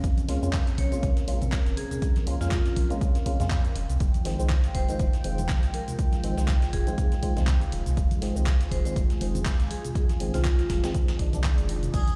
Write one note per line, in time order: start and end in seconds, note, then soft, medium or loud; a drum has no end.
0.00 0.13 A#1 loud
0.00 3.72 C4 medium
0.00 3.72 C#4 medium
0.00 kick loud
0.00 closed hi-hat medium
0.04 3.72 A#4 medium
0.04 shaker medium
0.17 closed hi-hat soft
0.17 closed hi-hat medium
0.17 high conga loud
0.17 shaker soft
0.28 0.38 C#2 medium
0.28 0.40 G#3 medium
0.28 0.40 A#3 medium
0.28 0.40 C#4 medium
0.28 0.41 F4 loud
0.28 snare soft
0.28 closed hi-hat medium
0.28 open hi-hat loud
0.42 0.73 F2 loud
0.42 0.58 G#3 medium
0.42 0.59 A#3 medium
0.42 0.59 C#4 medium
0.42 0.59 F4 loud
0.42 shaker medium
0.53 kick loud
0.53 snare loud
0.53 clap loud
0.53 closed hi-hat medium
0.53 shaker medium
0.67 snare soft
0.67 closed hi-hat medium
0.67 shaker soft
0.78 0.88 A#1 medium
0.78 0.87 C#5 medium
0.78 kick medium
0.78 closed hi-hat medium
0.78 open hi-hat loud
0.78 muted conga soft
0.78 high conga medium
0.92 1.08 G#3 medium
0.92 1.08 A#3 medium
0.92 1.08 C#4 medium
0.92 1.09 F4 medium
0.92 0.99 C#5 medium
0.92 closed hi-hat soft
0.92 shaker medium
1.03 1.13 A#1 medium
1.03 kick loud
1.03 closed hi-hat medium
1.03 shaker medium
1.17 snare soft
1.17 closed hi-hat medium
1.17 shaker soft
1.27 1.60 A#1 medium
1.27 1.46 G#3 medium
1.27 1.46 A#3 medium
1.27 1.46 C#4 medium
1.27 1.46 F4 loud
1.27 closed hi-hat medium
1.27 open hi-hat loud
1.27 muted conga medium
1.41 closed hi-hat soft
1.41 muted conga soft
1.41 high conga loud
1.41 low conga medium
1.41 shaker medium
1.52 kick loud
1.52 snare loud
1.52 clap loud
1.52 closed hi-hat medium
1.52 shaker medium
1.66 1.74 F1 medium
1.66 snare soft
1.66 closed hi-hat medium
1.66 shaker soft
1.77 1.86 G#4 medium
1.77 closed hi-hat medium
1.77 open hi-hat loud
1.77 muted conga medium
1.91 1.98 G#4 medium
1.91 closed hi-hat soft
1.91 low conga medium
1.91 shaker medium
2.02 kick loud
2.02 closed hi-hat medium
2.02 shaker medium
2.16 snare soft
2.16 closed hi-hat medium
2.16 high conga loud
2.16 shaker soft
2.26 2.37 C#2 medium
2.26 2.38 G#3 medium
2.26 2.39 A#3 medium
2.26 2.39 C#4 medium
2.26 2.39 F4 loud
2.26 closed hi-hat medium
2.26 open hi-hat loud
2.40 2.71 F2 loud
2.40 2.57 G#3 medium
2.40 2.57 A#3 medium
2.40 2.57 C#4 medium
2.40 2.90 F4 medium
2.40 2.57 F4 medium
2.40 snare soft
2.40 shaker medium
2.51 kick loud
2.51 snare loud
2.51 clap loud
2.51 closed hi-hat medium
2.51 shaker medium
2.66 snare medium
2.66 closed hi-hat medium
2.66 shaker soft
2.76 2.86 A#1 medium
2.76 kick medium
2.76 closed hi-hat medium
2.76 open hi-hat loud
2.76 muted conga soft
2.76 high conga medium
2.90 3.17 G#3 medium
2.90 3.17 A#3 medium
2.90 3.18 C#4 medium
2.90 3.18 F4 loud
2.90 closed hi-hat soft
2.90 shaker medium
3.01 kick loud
3.01 closed hi-hat medium
3.01 shaker medium
3.15 snare soft
3.15 closed hi-hat medium
3.15 muted conga soft
3.15 shaker soft
3.26 3.38 G#3 medium
3.26 3.38 A#3 medium
3.26 3.38 C#4 medium
3.26 3.38 F4 medium
3.26 kick medium
3.26 closed hi-hat medium
3.26 open hi-hat loud
3.39 3.70 F2 loud
3.39 3.67 G#3 medium
3.39 3.67 A#3 medium
3.39 3.67 C#4 medium
3.39 3.67 F4 medium
3.39 snare soft
3.39 closed hi-hat soft
3.39 high conga medium
3.39 low conga medium
3.39 shaker medium
3.50 kick loud
3.50 snare loud
3.50 clap loud
3.50 closed hi-hat medium
3.50 shaker medium
3.65 closed hi-hat soft
3.65 shaker soft
3.76 3.85 F1 medium
3.76 11.90 G#3 medium
3.76 11.90 F4 medium
3.76 7.68 G5 loud
3.76 closed hi-hat medium
3.76 open hi-hat loud
3.76 muted conga medium
3.90 3.97 C2 medium
3.90 closed hi-hat soft
3.90 low conga medium
3.90 shaker medium
4.00 4.10 F1 loud
4.00 kick loud
4.00 closed hi-hat medium
4.00 shaker medium
4.14 closed hi-hat medium
4.14 closed hi-hat soft
4.14 high conga medium
4.14 shaker soft
4.25 4.35 G#1 medium
4.25 4.37 D#3 loud
4.25 4.37 F3 medium
4.25 4.37 G#3 medium
4.25 4.37 C4 loud
4.25 snare soft
4.25 closed hi-hat medium
4.25 open hi-hat loud
4.39 4.69 C2 loud
4.39 4.55 D#3 medium
4.39 4.55 F3 medium
4.39 4.55 G#3 medium
4.39 4.56 C4 loud
4.39 shaker medium
4.50 kick loud
4.50 snare loud
4.50 clap loud
4.50 closed hi-hat medium
4.50 shaker medium
4.64 snare soft
4.64 closed hi-hat medium
4.64 shaker soft
4.75 4.84 F1 medium
4.75 4.84 C5 medium
4.75 kick medium
4.75 closed hi-hat medium
4.75 open hi-hat loud
4.75 muted conga soft
4.75 high conga medium
4.88 5.05 D#3 medium
4.88 5.05 F3 medium
4.88 5.05 G#3 medium
4.88 5.05 C4 medium
4.88 4.96 C5 medium
4.88 closed hi-hat soft
4.88 shaker medium
4.99 5.09 F1 medium
4.99 kick loud
4.99 closed hi-hat medium
4.99 shaker medium
5.13 snare soft
5.13 closed hi-hat soft
5.13 shaker soft
5.24 5.56 F1 medium
5.24 5.42 D#3 medium
5.24 5.42 F3 medium
5.24 5.43 G#3 medium
5.24 5.43 C4 loud
5.24 closed hi-hat medium
5.24 open hi-hat loud
5.24 muted conga medium
5.38 closed hi-hat soft
5.38 muted conga medium
5.38 high conga medium
5.38 low conga medium
5.38 shaker medium
5.49 kick loud
5.49 snare loud
5.49 clap loud
5.49 closed hi-hat medium
5.49 shaker medium
5.63 5.71 C2 medium
5.63 snare soft
5.63 closed hi-hat soft
5.63 shaker soft
5.74 5.96 A#4 medium
5.74 closed hi-hat medium
5.74 open hi-hat loud
5.74 muted conga medium
5.88 closed hi-hat soft
5.88 low conga medium
5.88 shaker medium
5.99 kick loud
5.99 closed hi-hat medium
5.99 shaker medium
6.12 snare soft
6.12 closed hi-hat medium
6.12 high conga medium
6.12 shaker soft
6.23 6.33 G#1 medium
6.23 6.35 D#3 medium
6.23 6.35 F3 medium
6.23 6.35 G#3 medium
6.23 6.36 C4 loud
6.23 closed hi-hat medium
6.23 open hi-hat loud
6.37 6.68 C2 loud
6.37 6.53 D#3 medium
6.37 6.54 F3 medium
6.37 6.54 G#3 medium
6.37 6.54 C4 medium
6.37 snare soft
6.37 shaker medium
6.48 kick loud
6.48 snare loud
6.48 clap loud
6.48 closed hi-hat medium
6.48 shaker medium
6.62 snare medium
6.62 closed hi-hat medium
6.62 shaker soft
6.73 6.83 F1 medium
6.73 7.43 G#4 medium
6.73 kick medium
6.73 closed hi-hat medium
6.73 open hi-hat loud
6.73 muted conga soft
6.73 high conga medium
6.87 7.14 D#3 medium
6.87 7.14 F3 medium
6.87 7.14 G#3 medium
6.87 7.14 C4 loud
6.87 closed hi-hat soft
6.87 shaker medium
6.98 kick loud
6.98 closed hi-hat medium
6.98 shaker medium
7.12 snare soft
7.12 closed hi-hat medium
7.12 shaker soft
7.22 7.34 D#3 medium
7.22 7.34 F3 medium
7.22 7.35 G#3 medium
7.22 7.35 C4 medium
7.22 kick medium
7.22 closed hi-hat medium
7.22 open hi-hat loud
7.36 7.67 C2 loud
7.36 7.63 D#3 medium
7.36 7.64 F3 medium
7.36 7.64 G#3 medium
7.36 7.64 C4 medium
7.36 snare soft
7.36 closed hi-hat soft
7.36 high conga medium
7.36 low conga medium
7.36 shaker medium
7.47 kick loud
7.47 snare loud
7.47 clap loud
7.47 closed hi-hat medium
7.47 shaker medium
7.61 closed hi-hat medium
7.61 shaker soft
7.72 7.82 D#1 medium
7.72 11.90 G#4 loud
7.72 closed hi-hat medium
7.72 open hi-hat loud
7.72 muted conga medium
7.86 7.94 C2 loud
7.86 closed hi-hat soft
7.86 low conga medium
7.86 shaker medium
7.97 8.07 F1 loud
7.97 kick loud
7.97 closed hi-hat medium
7.97 shaker medium
8.11 closed hi-hat soft
8.11 closed hi-hat medium
8.11 high conga medium
8.11 shaker soft
8.21 8.32 G#1 medium
8.21 8.33 D#3 medium
8.21 8.34 F3 medium
8.21 8.34 G#3 medium
8.21 8.34 C4 loud
8.21 snare soft
8.21 closed hi-hat medium
8.21 open hi-hat loud
8.35 8.66 C2 loud
8.35 8.52 D#3 medium
8.35 8.52 F3 medium
8.35 8.52 G#3 medium
8.35 8.52 C4 loud
8.35 shaker medium
8.46 kick loud
8.46 snare loud
8.46 clap loud
8.46 closed hi-hat medium
8.46 shaker medium
8.61 snare soft
8.61 closed hi-hat medium
8.61 shaker soft
8.71 8.81 F1 medium
8.71 8.80 C5 medium
8.71 kick medium
8.71 closed hi-hat medium
8.71 open hi-hat loud
8.71 muted conga soft
8.71 high conga medium
8.85 9.01 D#3 medium
8.85 9.01 F3 medium
8.85 9.02 G#3 medium
8.85 9.02 C4 medium
8.85 8.92 C5 medium
8.85 closed hi-hat soft
8.85 shaker medium
8.96 9.06 F1 medium
8.96 kick loud
8.96 closed hi-hat medium
8.96 shaker medium
9.10 snare soft
9.10 closed hi-hat medium
9.10 shaker soft
9.20 9.53 F1 medium
9.20 9.39 D#3 medium
9.20 9.39 F3 medium
9.20 9.39 G#3 medium
9.20 9.39 C4 loud
9.20 closed hi-hat medium
9.20 open hi-hat loud
9.20 muted conga medium
9.35 closed hi-hat soft
9.35 muted conga medium
9.35 high conga medium
9.35 low conga medium
9.35 shaker medium
9.45 kick loud
9.45 snare loud
9.45 clap loud
9.45 closed hi-hat medium
9.45 shaker medium
9.60 9.67 C2 medium
9.60 snare soft
9.60 closed hi-hat medium
9.60 shaker soft
9.71 9.80 G#4 medium
9.71 closed hi-hat medium
9.71 open hi-hat loud
9.71 muted conga medium
9.85 9.92 G#4 medium
9.85 closed hi-hat soft
9.85 low conga medium
9.85 shaker medium
9.95 kick loud
9.95 closed hi-hat medium
9.95 shaker medium
10.09 snare soft
10.09 closed hi-hat medium
10.09 high conga medium
10.09 shaker soft
10.20 10.30 G#1 medium
10.20 10.32 D#3 medium
10.20 10.32 F3 medium
10.20 10.32 G#3 medium
10.20 10.32 C4 loud
10.20 closed hi-hat medium
10.20 open hi-hat loud
10.34 10.65 C2 loud
10.34 10.50 D#3 medium
10.34 10.50 F3 medium
10.34 10.50 G#3 medium
10.34 10.51 C4 medium
10.34 10.84 F4 medium
10.34 snare soft
10.34 open hi-hat medium
10.34 low conga medium
10.34 shaker medium
10.45 kick loud
10.45 snare loud
10.45 clap loud
10.45 closed hi-hat medium
10.45 shaker medium
10.59 snare medium
10.59 closed hi-hat medium
10.59 shaker soft
10.69 10.79 F1 medium
10.69 kick medium
10.69 snare loud
10.69 closed hi-hat medium
10.69 open hi-hat loud
10.69 muted conga soft
10.69 high conga medium
10.83 11.11 D#3 medium
10.83 11.11 F3 medium
10.83 11.11 G#3 medium
10.83 11.11 C4 medium
10.83 snare loud
10.83 closed hi-hat medium
10.83 closed hi-hat soft
10.83 shaker medium
10.94 kick loud
10.94 closed hi-hat medium
10.94 shaker medium
11.08 snare loud
11.08 closed hi-hat medium
11.08 muted conga soft
11.08 shaker soft
11.19 11.29 G#1 medium
11.19 11.31 D#3 medium
11.19 11.31 F3 medium
11.19 11.31 G#3 medium
11.19 11.31 D4 medium
11.19 kick medium
11.19 snare soft
11.19 open hi-hat loud
11.32 11.60 C2 loud
11.32 11.92 D#3 medium
11.32 11.92 F3 medium
11.32 11.93 G#3 medium
11.32 11.93 D4 medium
11.32 closed hi-hat medium
11.32 closed hi-hat soft
11.32 high conga loud
11.32 low conga medium
11.32 shaker medium
11.44 kick loud
11.44 snare loud
11.44 clap loud
11.44 closed hi-hat medium
11.44 shaker medium
11.58 11.89 F1 loud
11.58 closed hi-hat medium
11.58 shaker soft
11.69 closed hi-hat medium
11.69 open hi-hat loud
11.69 muted conga medium
11.83 closed hi-hat soft
11.83 low conga medium
11.83 shaker medium
11.94 12.03 A#1 loud
11.94 12.16 C#4 medium
11.94 12.16 G#4 loud
11.94 12.16 G#4 medium
11.94 12.16 C5 medium
11.94 kick loud
11.94 closed hi-hat medium
11.94 crash medium
11.94 shaker medium
12.07 closed hi-hat soft
12.07 closed hi-hat medium
12.07 high conga medium
12.07 shaker soft